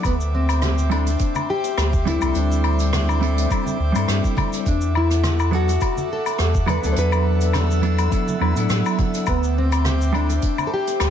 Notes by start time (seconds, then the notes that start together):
Already playing: E5 D6
0.03 D2 B3 C5 G5, kick, closed hi-hat, low woodblock, shaker
0.21 shaker
0.35 C4
0.49 cross-stick, closed hi-hat, low woodblock, shaker
0.62 cross-stick, closed hi-hat, high conga, shaker
0.78 shaker
0.90 G3 C4 D4 E4 A4, closed hi-hat, low woodblock
1.07 closed hi-hat, shaker
1.19 kick, closed hi-hat, shaker
1.35 high conga, low woodblock, shaker
1.50 G4
1.64 closed hi-hat, shaker
1.78 D2, cross-stick, closed hi-hat, low woodblock, shaker
1.93 kick, shaker
2.05 G3 C4 D4 E4 A4, closed hi-hat, high conga
2.19 C2 G3 C4 D4, closed hi-hat, low conga, low woodblock, shaker
2.24 E4 A4
2.35 D2 D4, closed hi-hat, shaker
2.52 shaker
2.64 closed hi-hat, low woodblock
2.79 closed hi-hat, shaker
2.93 cross-stick, closed hi-hat, high conga, low conga, shaker
3.09 low woodblock, shaker
3.20 G3 C4 D4 E4 A4, closed hi-hat
3.38 closed hi-hat, shaker
3.49 G3 C4 D4 E4 A4, kick, closed hi-hat, low woodblock, shaker
3.66 high conga, shaker
3.80 D2
3.92 G2 G3 C4 D4, closed hi-hat, low woodblock, shaker
3.97 E4 A4
4.08 G2, cross-stick, closed hi-hat, shaker
4.24 kick, shaker
4.37 kick, closed hi-hat, high conga, low woodblock
4.53 closed hi-hat, shaker
4.66 E2 D4 A4 F#5, kick, closed hi-hat, shaker
4.81 shaker
4.95 E4, low woodblock
5.10 cross-stick, closed hi-hat, shaker
5.23 cross-stick, closed hi-hat, high conga, shaker
5.40 low woodblock, shaker
5.51 F#3 B3 D4 F#4 A4, closed hi-hat
5.69 closed hi-hat, shaker
5.81 kick, closed hi-hat, low woodblock, shaker
5.97 high conga, shaker
6.13 A4
6.26 closed hi-hat, low woodblock, shaker
6.39 E2, cross-stick, closed hi-hat, shaker
6.55 kick, shaker
6.66 F#3 B3 D4 A4 B4, closed hi-hat, high conga, low woodblock
6.80 D2 F#3 B3 D4, low conga, shaker
6.84 A4, closed hi-hat
6.92 C5, closed hi-hat
6.97 E2 B4 E6, shaker
7.12 low woodblock, shaker
7.41 closed hi-hat, shaker
7.53 cross-stick, closed hi-hat, high conga, low conga, low woodblock, shaker
7.71 shaker
7.82 F#3 B3 D4 E4 A4, closed hi-hat
7.98 closed hi-hat, low woodblock, shaker
8.10 F#3 B3 D4 E4 A4, kick, closed hi-hat, shaker
8.28 high conga, shaker
8.39 E2 F#3 B3 D4 E4 B4, low woodblock
8.53 A2 F#3 B3 D4, closed hi-hat, shaker
8.58 E4 A4
8.70 A2, cross-stick, closed hi-hat, shaker
8.86 low woodblock, shaker
8.99 kick, closed hi-hat, high conga
9.14 closed hi-hat, shaker
9.26 D2 B3 C5 E5 G5 D6, kick, closed hi-hat, low woodblock, shaker
9.43 shaker
9.58 C4
9.72 cross-stick, closed hi-hat, low woodblock, shaker
9.85 cross-stick, closed hi-hat, high conga, shaker
10.02 shaker
10.13 G3 C4 D4 E4 A4, closed hi-hat, low woodblock
10.29 closed hi-hat, shaker
10.42 kick, closed hi-hat, shaker
10.58 high conga, low woodblock, shaker
10.67 A4
10.74 G4
10.87 closed hi-hat, shaker
11.00 D2, cross-stick, closed hi-hat, low woodblock, shaker